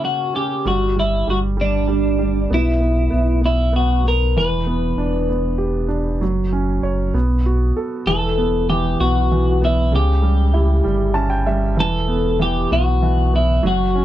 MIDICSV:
0, 0, Header, 1, 4, 480
1, 0, Start_track
1, 0, Tempo, 618557
1, 508, Time_signature, 6, 3, 24, 8
1, 10902, End_track
2, 0, Start_track
2, 0, Title_t, "Clean electric guitar"
2, 0, Program_c, 0, 27
2, 37, Note_on_c, 0, 66, 69
2, 275, Note_off_c, 0, 66, 0
2, 278, Note_on_c, 0, 67, 67
2, 520, Note_off_c, 0, 67, 0
2, 524, Note_on_c, 0, 66, 69
2, 740, Note_off_c, 0, 66, 0
2, 773, Note_on_c, 0, 64, 63
2, 1007, Note_off_c, 0, 64, 0
2, 1011, Note_on_c, 0, 66, 65
2, 1072, Note_off_c, 0, 66, 0
2, 1251, Note_on_c, 0, 62, 68
2, 1969, Note_off_c, 0, 62, 0
2, 1972, Note_on_c, 0, 64, 74
2, 2648, Note_off_c, 0, 64, 0
2, 2682, Note_on_c, 0, 64, 74
2, 2898, Note_off_c, 0, 64, 0
2, 2920, Note_on_c, 0, 66, 72
2, 3160, Note_off_c, 0, 66, 0
2, 3167, Note_on_c, 0, 70, 69
2, 3393, Note_off_c, 0, 70, 0
2, 3396, Note_on_c, 0, 71, 80
2, 4871, Note_off_c, 0, 71, 0
2, 4871, Note_on_c, 0, 70, 80
2, 5760, Note_off_c, 0, 70, 0
2, 6264, Note_on_c, 0, 69, 77
2, 6745, Note_off_c, 0, 69, 0
2, 6748, Note_on_c, 0, 67, 78
2, 6970, Note_off_c, 0, 67, 0
2, 6988, Note_on_c, 0, 66, 80
2, 7481, Note_off_c, 0, 66, 0
2, 7487, Note_on_c, 0, 64, 66
2, 7722, Note_off_c, 0, 64, 0
2, 7725, Note_on_c, 0, 67, 73
2, 8644, Note_off_c, 0, 67, 0
2, 9160, Note_on_c, 0, 69, 91
2, 9636, Note_off_c, 0, 69, 0
2, 9639, Note_on_c, 0, 67, 75
2, 9874, Note_off_c, 0, 67, 0
2, 9877, Note_on_c, 0, 66, 81
2, 10362, Note_off_c, 0, 66, 0
2, 10365, Note_on_c, 0, 64, 69
2, 10579, Note_off_c, 0, 64, 0
2, 10609, Note_on_c, 0, 66, 66
2, 10902, Note_off_c, 0, 66, 0
2, 10902, End_track
3, 0, Start_track
3, 0, Title_t, "Grand piano"
3, 0, Program_c, 1, 0
3, 0, Control_c, 1, 64, 127
3, 0, Note_on_c, 1, 49, 44
3, 0, Note_on_c, 1, 58, 52
3, 0, Note_on_c, 1, 61, 42
3, 252, Note_off_c, 1, 61, 0
3, 264, Note_on_c, 1, 61, 42
3, 477, Note_off_c, 1, 58, 0
3, 479, Note_off_c, 1, 49, 0
3, 499, Note_off_c, 1, 61, 0
3, 507, Note_on_c, 1, 55, 48
3, 518, Control_c, 1, 64, 0
3, 668, Control_c, 1, 64, 127
3, 734, Note_off_c, 1, 55, 0
3, 745, Note_on_c, 1, 55, 43
3, 978, Note_off_c, 1, 55, 0
3, 990, Note_on_c, 1, 55, 41
3, 1206, Note_off_c, 1, 55, 0
3, 1218, Note_on_c, 1, 55, 43
3, 1444, Note_off_c, 1, 55, 0
3, 1455, Note_on_c, 1, 55, 42
3, 1684, Note_off_c, 1, 55, 0
3, 1696, Note_on_c, 1, 55, 44
3, 1934, Note_off_c, 1, 55, 0
3, 1942, Note_on_c, 1, 59, 49
3, 1957, Control_c, 1, 64, 0
3, 2080, Control_c, 1, 64, 127
3, 2163, Note_off_c, 1, 59, 0
3, 2175, Note_on_c, 1, 59, 43
3, 2397, Note_off_c, 1, 59, 0
3, 2409, Note_on_c, 1, 59, 44
3, 2636, Note_off_c, 1, 59, 0
3, 2648, Note_on_c, 1, 59, 43
3, 2880, Note_off_c, 1, 59, 0
3, 2892, Note_on_c, 1, 59, 46
3, 3126, Note_off_c, 1, 59, 0
3, 3138, Note_on_c, 1, 59, 42
3, 3374, Note_off_c, 1, 59, 0
3, 3387, Note_on_c, 1, 52, 50
3, 3394, Control_c, 1, 64, 0
3, 3555, Control_c, 1, 64, 127
3, 3620, Note_on_c, 1, 59, 46
3, 3865, Note_on_c, 1, 62, 44
3, 4095, Note_off_c, 1, 59, 0
3, 4107, Note_on_c, 1, 59, 42
3, 4331, Note_on_c, 1, 67, 41
3, 4555, Note_off_c, 1, 62, 0
3, 4567, Note_on_c, 1, 62, 44
3, 4795, Note_off_c, 1, 52, 0
3, 4804, Note_off_c, 1, 59, 0
3, 4804, Note_off_c, 1, 67, 0
3, 4808, Note_off_c, 1, 62, 0
3, 4820, Note_on_c, 1, 54, 47
3, 4834, Control_c, 1, 64, 0
3, 4983, Control_c, 1, 64, 127
3, 5064, Note_on_c, 1, 61, 44
3, 5302, Note_on_c, 1, 73, 44
3, 5521, Note_off_c, 1, 54, 0
3, 5530, Note_off_c, 1, 61, 0
3, 5537, Note_off_c, 1, 73, 0
3, 5542, Note_on_c, 1, 59, 54
3, 5556, Control_c, 1, 64, 0
3, 5713, Control_c, 1, 64, 127
3, 5789, Note_on_c, 1, 66, 42
3, 6026, Note_on_c, 1, 69, 43
3, 6242, Note_off_c, 1, 59, 0
3, 6253, Note_off_c, 1, 66, 0
3, 6259, Note_off_c, 1, 69, 0
3, 6269, Note_on_c, 1, 52, 53
3, 6276, Control_c, 1, 64, 0
3, 6396, Control_c, 1, 64, 127
3, 6501, Note_on_c, 1, 59, 46
3, 6737, Note_off_c, 1, 52, 0
3, 6748, Note_on_c, 1, 52, 50
3, 6976, Note_off_c, 1, 59, 0
3, 6987, Note_on_c, 1, 59, 43
3, 7216, Note_off_c, 1, 52, 0
3, 7228, Note_on_c, 1, 52, 47
3, 7451, Note_off_c, 1, 59, 0
3, 7463, Note_on_c, 1, 59, 45
3, 7692, Note_off_c, 1, 52, 0
3, 7697, Note_off_c, 1, 59, 0
3, 7697, Note_on_c, 1, 49, 53
3, 7714, Control_c, 1, 64, 0
3, 7836, Control_c, 1, 64, 127
3, 7933, Note_on_c, 1, 55, 46
3, 8176, Note_on_c, 1, 64, 50
3, 8400, Note_off_c, 1, 55, 0
3, 8411, Note_on_c, 1, 55, 50
3, 8645, Note_on_c, 1, 81, 62
3, 8646, Note_on_c, 1, 61, 48
3, 8766, Note_off_c, 1, 81, 0
3, 8767, Note_on_c, 1, 79, 60
3, 8884, Note_off_c, 1, 55, 0
3, 8887, Note_off_c, 1, 79, 0
3, 8895, Note_on_c, 1, 55, 48
3, 8897, Note_on_c, 1, 76, 61
3, 9110, Note_off_c, 1, 49, 0
3, 9111, Note_off_c, 1, 64, 0
3, 9121, Note_off_c, 1, 61, 0
3, 9124, Note_off_c, 1, 76, 0
3, 9131, Note_on_c, 1, 52, 57
3, 9133, Note_off_c, 1, 55, 0
3, 9156, Control_c, 1, 64, 0
3, 9268, Control_c, 1, 64, 127
3, 9375, Note_on_c, 1, 59, 50
3, 9605, Note_off_c, 1, 52, 0
3, 9617, Note_on_c, 1, 52, 53
3, 9851, Note_off_c, 1, 59, 0
3, 9862, Note_on_c, 1, 59, 49
3, 10095, Note_off_c, 1, 52, 0
3, 10107, Note_on_c, 1, 52, 47
3, 10335, Note_off_c, 1, 59, 0
3, 10347, Note_on_c, 1, 59, 48
3, 10571, Note_off_c, 1, 52, 0
3, 10577, Note_on_c, 1, 54, 58
3, 10579, Note_off_c, 1, 59, 0
3, 10594, Control_c, 1, 64, 0
3, 10715, Control_c, 1, 64, 127
3, 10827, Note_on_c, 1, 61, 48
3, 10902, Note_off_c, 1, 54, 0
3, 10902, Note_off_c, 1, 61, 0
3, 10902, End_track
4, 0, Start_track
4, 0, Title_t, "Sub bass"
4, 0, Program_c, 2, 38
4, 509, Note_on_c, 2, 31, 85
4, 959, Note_off_c, 2, 31, 0
4, 986, Note_on_c, 2, 31, 84
4, 1915, Note_off_c, 2, 31, 0
4, 1943, Note_on_c, 2, 35, 88
4, 2396, Note_off_c, 2, 35, 0
4, 2426, Note_on_c, 2, 35, 84
4, 3377, Note_on_c, 2, 28, 94
4, 3389, Note_off_c, 2, 35, 0
4, 3832, Note_off_c, 2, 28, 0
4, 3851, Note_on_c, 2, 28, 75
4, 4821, Note_on_c, 2, 30, 84
4, 4832, Note_off_c, 2, 28, 0
4, 5274, Note_off_c, 2, 30, 0
4, 5297, Note_on_c, 2, 30, 76
4, 5526, Note_off_c, 2, 30, 0
4, 5539, Note_on_c, 2, 35, 92
4, 5993, Note_off_c, 2, 35, 0
4, 6257, Note_on_c, 2, 28, 90
4, 6950, Note_off_c, 2, 28, 0
4, 6983, Note_on_c, 2, 35, 78
4, 7704, Note_on_c, 2, 37, 103
4, 7716, Note_off_c, 2, 35, 0
4, 8394, Note_off_c, 2, 37, 0
4, 8425, Note_on_c, 2, 31, 87
4, 9139, Note_on_c, 2, 28, 97
4, 9150, Note_off_c, 2, 31, 0
4, 9831, Note_off_c, 2, 28, 0
4, 9865, Note_on_c, 2, 35, 92
4, 10554, Note_off_c, 2, 35, 0
4, 10580, Note_on_c, 2, 30, 98
4, 10902, Note_off_c, 2, 30, 0
4, 10902, End_track
0, 0, End_of_file